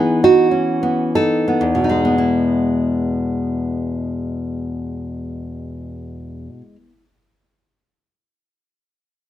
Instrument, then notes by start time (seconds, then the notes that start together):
nylon-string guitar
Already playing: E3 B3 D#4 G#4
0.24 D#4 F#4
0.51 C#4
0.83 B3
1.15 D#4 A4
1.48 B3
1.61 E2
1.75 B2
1.84 D#4
1.89 G#3
2.05 B3
2.18 E4